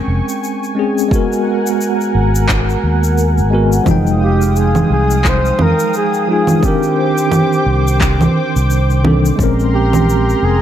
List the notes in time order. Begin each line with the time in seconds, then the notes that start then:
Already playing: G#3 C4 C#4 A#4 G5 G#5 C#6
0.08 F1
0.29 shaker
0.44 shaker
0.63 shaker
0.75 G#3 C4 C#4 G#4
0.98 shaker
1.08 G#3 B3 A#4 F#5, kick
1.13 F#4 A#4, shaker
1.33 shaker
1.67 shaker
1.81 shaker
2.01 shaker
2.15 G#1
2.35 shaker
2.49 kick, clap, shaker
2.69 shaker
2.84 D#2
3.04 shaker
3.18 shaker
3.38 G#1, shaker
3.50 G#3 B3 F#4
3.54 A#4
3.72 shaker
3.83 F1 F3 G#3 G5 D#6, kick, low conga, shaker
3.88 G#3 D#4 F5 G5
4.07 shaker
4.23 G4
4.42 shaker
4.56 G#4, shaker
4.75 low conga, shaker
4.90 C2 G#4
5.10 shaker
5.24 C5, kick, clap, shaker
5.46 shaker
5.59 F2 A#4, low conga
5.79 shaker
5.94 G#4, shaker
6.14 shaker
6.28 F3 G#3 D#4 F4 G#4
6.47 low conga, shaker
6.60 D#3 C4 C5 G5 D6, kick, shaker
6.65 D4 G4 A#4
6.83 shaker
7.18 shaker
7.32 low conga, shaker
7.53 shaker
7.66 C2
7.87 shaker
8.01 kick, clap, shaker
8.21 low conga, shaker
8.56 C2, shaker
8.70 shaker
8.90 shaker
9.03 D#3 C4 D4, low conga
9.08 A4
9.25 shaker
9.36 A#1 G#3 C4 A#4 A#5, kick
9.40 C#4 A#4 C6, shaker
9.60 shaker
9.75 G4
9.93 low conga, shaker
10.09 shaker
10.30 shaker
10.43 F1 G#4